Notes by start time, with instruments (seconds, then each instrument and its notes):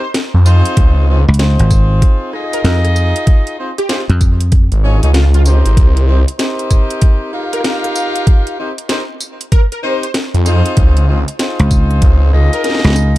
0.03 digital synth lead C5
0.14 snare, closed hi-hat
0.34 detuned saw bass F2
0.46 horn section C4 D#4 F4 G#4 C5, tambourine
0.65 closed hi-hat
0.77 detuned saw bass C#2, kick, closed hi-hat
1.08 horn section C4 D#4 F4 G#4 C5
1.28 slap bass C#2
1.34 closed hi-hat
1.39 horn section C4 D#4 F4 G#4 C5, snare, closed hi-hat
1.59 slap bass G#1, closed hi-hat
1.71 kick, cross-stick, tambourine
2.02 kick, closed hi-hat
2.33 horn section D#4 F4 G#4 D#5, cross-stick
2.40 cross-stick
2.44 cross-stick
2.53 digital synth lead A#4, cross-stick, closed hi-hat
2.61 slap bass F2, digital synth lead A#4, cross-stick, snare, closed hi-hat
2.85 cross-stick, closed hi-hat
2.96 tambourine
3.16 closed hi-hat
3.27 kick, closed hi-hat
3.47 closed hi-hat
3.58 horn section C4 D#4 F4 G#4 C5
3.78 digital synth lead G4, closed hi-hat
3.89 horn section C4 D#4 F4 G#4 C5, snare, closed hi-hat
4.09 slap bass F2, closed hi-hat
4.21 kick, tambourine
4.41 closed hi-hat
4.52 kick, closed hi-hat
4.72 detuned saw bass G#1, closed hi-hat
4.83 horn section C#4 D#4 F4 G#4 C#5
5.03 detuned saw bass C#2, horn section C#4 D#4 F4 G#4 C#5, closed hi-hat
5.14 digital synth lead F4, snare, closed hi-hat
5.34 digital synth lead F4, closed hi-hat
5.46 horn section C4 D#4 G4 A#4 C5, tambourine
5.66 detuned saw bass G#1, closed hi-hat
5.77 detuned saw bass C2, kick, closed hi-hat
5.97 closed hi-hat
6.08 horn section C4 D#4 G4 A#4 C5
6.28 closed hi-hat
6.39 horn section C4 D#4 G4 A#4 C5, snare, closed hi-hat
6.59 closed hi-hat
6.71 kick, cross-stick, tambourine
6.90 closed hi-hat
7.02 kick, closed hi-hat
7.33 horn section D#4 F4 G4 A#4 F5, cross-stick
7.40 cross-stick
7.43 cross-stick
7.53 digital synth lead A#4, cross-stick, closed hi-hat
7.61 cross-stick, snare, closed hi-hat
7.65 digital synth lead A#4
7.84 cross-stick, closed hi-hat
7.96 tambourine
8.16 closed hi-hat
8.27 kick, closed hi-hat
8.47 closed hi-hat
8.58 horn section C4 D#4 G4 A#4 C5
8.78 closed hi-hat
8.89 horn section C4 D#4 G4 A#4 C5, snare, closed hi-hat
9.20 tambourine
9.41 closed hi-hat
9.52 digital synth lead A#4, kick, closed hi-hat
9.72 digital synth lead A#4, closed hi-hat
9.83 horn section C4 D#4 G4 A#4 C5, digital synth lead C5
10.03 digital synth lead C5, closed hi-hat
10.14 snare, closed hi-hat
10.34 detuned saw bass F2, closed hi-hat
10.46 horn section C4 D#4 F4 G#4 C5, tambourine
10.66 closed hi-hat
10.77 detuned saw bass C#2, kick, closed hi-hat
10.97 closed hi-hat
11.08 horn section C4 D#4 F4 G#4 C5
11.28 closed hi-hat
11.39 horn section C4 D#4 F4 G#4 C5, snare, closed hi-hat
11.60 slap bass C#2, closed hi-hat
11.71 kick, tambourine
11.91 closed hi-hat
12.02 detuned saw bass C#2, kick, closed hi-hat
12.33 detuned saw bass C#2, horn section D#4 F4 G#4 D#5, cross-stick
12.53 digital synth lead A#4, closed hi-hat
12.64 digital synth lead A#4, snare, closed hi-hat
12.69 snare
12.74 snare
12.79 snare
12.84 slap bass C#2, cross-stick, snare, closed hi-hat
12.87 snare
12.90 snare
12.93 snare, tambourine